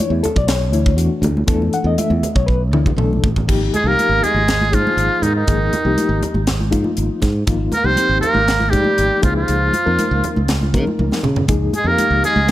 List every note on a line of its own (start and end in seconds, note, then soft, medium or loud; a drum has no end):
0.00 0.12 E3 medium
0.00 0.12 A3 medium
0.00 0.12 D4 medium
0.00 0.11 E4 medium
0.00 0.12 C#5 medium
0.00 high conga medium
0.10 0.21 E2 medium
0.10 0.24 E4 medium
0.23 0.36 A4 medium
0.23 closed hi-hat medium
0.23 low conga medium
0.36 0.72 B1 loud
0.36 0.49 D5 loud
0.36 kick medium
0.48 0.95 C#5 medium
0.48 snare loud
0.48 closed hi-hat medium
0.72 0.97 D2 loud
0.72 0.89 E3 medium
0.72 0.89 A3 medium
0.72 0.89 D4 medium
0.72 0.89 E4 medium
0.72 closed hi-hat medium
0.86 kick medium
0.97 1.08 E2 loud
0.97 1.30 E3 medium
0.97 1.30 A3 medium
0.97 1.30 D4 medium
0.97 1.30 F#4 medium
0.97 closed hi-hat medium
1.22 1.43 D2 medium
1.22 closed hi-hat medium
1.22 high conga medium
1.22 low conga medium
1.37 high conga medium
1.47 1.68 E2 loud
1.47 2.11 E3 medium
1.47 2.11 A3 medium
1.47 2.11 D4 medium
1.47 2.11 A4 medium
1.47 kick loud
1.47 closed hi-hat medium
1.62 high conga medium
1.73 1.86 F#5 medium
1.73 closed hi-hat medium
1.84 1.95 E2 medium
1.84 1.99 D#5 medium
1.98 2.34 E5 loud
1.98 closed hi-hat medium
1.98 high conga medium
2.10 2.21 E2 medium
2.10 high conga medium
2.23 closed hi-hat medium
2.23 low conga medium
2.35 2.71 B1 medium
2.35 2.48 C#5 medium
2.35 kick medium
2.46 2.62 B4 medium
2.46 kick medium
2.71 2.96 D2 medium
2.71 2.89 E3 medium
2.71 2.90 A3 medium
2.71 2.90 D4 medium
2.71 2.90 E4 medium
2.71 mid tom medium
2.86 kick medium
2.86 low conga medium
2.96 3.20 B1 medium
2.96 3.30 E3 medium
2.96 3.30 A3 medium
2.96 3.30 D4 medium
2.96 3.30 A4 medium
2.96 mid tom medium
3.13 high conga soft
3.24 3.46 A1 medium
3.24 kick loud
3.24 low conga medium
3.36 kick medium
3.36 low conga medium
3.48 3.68 G#1 medium
3.48 3.72 F3 medium
3.48 3.72 A#3 medium
3.48 3.72 D#4 medium
3.48 3.72 G4 medium
3.48 kick loud
3.48 crash medium
3.74 3.88 G#3 medium
3.74 3.89 G#4 medium
3.74 closed hi-hat medium
3.74 high conga medium
3.74 low conga medium
3.84 3.95 C2 medium
3.84 4.42 F3 medium
3.84 4.41 A#3 medium
3.84 4.25 A#3 medium
3.84 4.41 D#4 medium
3.84 4.42 G4 medium
3.84 4.25 A#4 loud
3.99 closed hi-hat medium
3.99 high conga medium
4.09 4.20 G#1 medium
4.23 4.75 G#3 medium
4.23 4.76 G#4 loud
4.23 closed hi-hat medium
4.23 low conga medium
4.34 4.75 G#1 medium
4.34 high conga medium
4.48 snare loud
4.48 closed hi-hat medium
4.48 low conga medium
4.62 high conga medium
4.72 4.84 G#2 medium
4.72 5.20 F3 medium
4.72 5.25 F3 medium
4.72 5.20 A#3 medium
4.72 5.20 D#4 medium
4.72 5.24 F4 medium
4.72 5.20 G#4 medium
4.72 kick medium
4.72 closed hi-hat medium
4.87 high conga medium
4.97 5.08 G#1 medium
4.97 closed hi-hat medium
5.22 5.43 G#2 medium
5.22 5.35 D#3 medium
5.22 5.35 D#4 medium
5.22 closed hi-hat medium
5.22 low conga medium
5.35 6.32 D#3 medium
5.35 6.32 D#4 medium
5.47 5.68 G#1 medium
5.47 5.71 F3 medium
5.47 5.71 A#3 medium
5.47 5.71 D#4 medium
5.47 5.72 G#4 medium
5.47 kick medium
5.47 closed hi-hat medium
5.73 closed hi-hat medium
5.73 high conga medium
5.73 low conga medium
5.85 5.95 C2 medium
5.85 6.41 F3 medium
5.85 6.41 A#3 medium
5.85 6.41 D#4 medium
5.85 6.41 G4 medium
5.97 closed hi-hat medium
5.97 high conga medium
6.09 6.20 G#1 medium
6.23 closed hi-hat medium
6.23 low conga medium
6.34 6.74 G#1 medium
6.34 high conga medium
6.47 snare loud
6.47 closed hi-hat medium
6.47 low conga medium
6.60 high conga medium
6.71 6.83 G#2 medium
6.71 7.20 F3 medium
6.71 7.20 A#3 medium
6.71 7.20 D#4 medium
6.71 7.20 F4 medium
6.71 kick medium
6.71 closed hi-hat medium
6.84 high conga medium
6.97 7.08 G#1 medium
6.97 closed hi-hat medium
7.22 7.43 G#2 medium
7.22 kick medium
7.22 snare soft
7.22 closed hi-hat medium
7.22 low conga medium
7.47 7.68 G#1 medium
7.47 7.71 F3 medium
7.47 7.71 A#3 medium
7.47 7.71 D#4 medium
7.47 7.71 F4 medium
7.47 kick loud
7.47 closed hi-hat medium
7.72 7.89 A#3 medium
7.72 7.87 A#4 medium
7.72 closed hi-hat medium
7.72 high conga medium
7.72 low conga medium
7.84 7.95 C2 medium
7.84 8.40 F3 medium
7.84 8.40 A#3 medium
7.84 8.23 C4 medium
7.84 8.40 D#4 medium
7.84 8.40 G4 medium
7.84 8.20 C5 loud
7.97 closed hi-hat medium
7.97 high conga medium
8.09 8.20 G#1 medium
8.21 8.74 A#3 medium
8.21 8.71 A#4 medium
8.21 closed hi-hat medium
8.21 low conga medium
8.34 8.74 G#1 medium
8.34 high conga medium
8.48 snare loud
8.48 closed hi-hat medium
8.48 low conga medium
8.60 high conga medium
8.70 8.83 G#2 medium
8.70 9.20 F3 medium
8.70 9.22 G3 medium
8.70 9.20 A#3 medium
8.70 9.20 D#4 medium
8.70 9.21 G4 medium
8.70 9.20 G4 medium
8.70 kick medium
8.70 closed hi-hat medium
8.84 high conga medium
8.98 9.09 G#1 medium
8.98 closed hi-hat medium
9.22 9.43 C#2 medium
9.22 9.73 F3 medium
9.22 9.33 F3 medium
9.22 9.73 A#3 medium
9.22 9.73 D#4 medium
9.22 9.35 F4 medium
9.22 9.73 G#4 medium
9.22 kick medium
9.22 closed hi-hat medium
9.22 low conga medium
9.34 10.31 F3 medium
9.34 10.32 F4 medium
9.48 9.69 C#2 medium
9.48 closed hi-hat medium
9.73 closed hi-hat medium
9.73 high conga medium
9.86 9.96 F2 medium
9.86 10.41 F3 medium
9.86 10.41 A#3 medium
9.86 10.41 D#4 medium
9.86 10.41 A#4 medium
9.99 closed hi-hat medium
9.99 high conga medium
10.11 10.21 C#2 medium
10.24 closed hi-hat medium
10.24 low conga medium
10.36 10.75 C#2 medium
10.36 high conga medium
10.48 snare loud
10.48 closed hi-hat medium
10.48 low conga medium
10.63 high conga medium
10.74 10.84 C#3 medium
10.74 11.21 F3 medium
10.74 11.21 A#3 medium
10.74 11.21 D#4 medium
10.74 11.21 A#4 medium
10.74 kick medium
10.74 closed hi-hat medium
10.87 high conga medium
10.99 11.09 C#2 medium
10.99 high tom medium
10.99 high conga soft
11.12 snare medium
11.12 high conga medium
11.23 11.43 C#3 medium
11.23 mid tom medium
11.23 low conga medium
11.36 floor tom medium
11.36 low conga medium
11.48 11.68 C#2 medium
11.48 11.72 F3 medium
11.48 11.72 A#3 medium
11.48 11.73 D#4 medium
11.48 11.72 G#4 medium
11.48 kick loud
11.48 closed hi-hat medium
11.73 11.89 G#4 medium
11.73 closed hi-hat medium
11.73 high conga medium
11.78 11.90 G#3 medium
11.84 11.95 F2 medium
11.84 12.41 F3 medium
11.84 12.41 A#3 medium
11.84 12.42 D#4 medium
11.84 12.42 G4 medium
11.84 12.24 A#4 medium
11.89 12.25 A#3 medium
11.98 closed hi-hat medium
11.98 high conga medium
12.10 12.21 C#2 medium
12.24 12.51 G#3 medium
12.24 12.51 G#4 medium
12.24 closed hi-hat medium
12.24 low conga medium
12.36 12.51 C#2 medium
12.36 high conga medium
12.48 low conga medium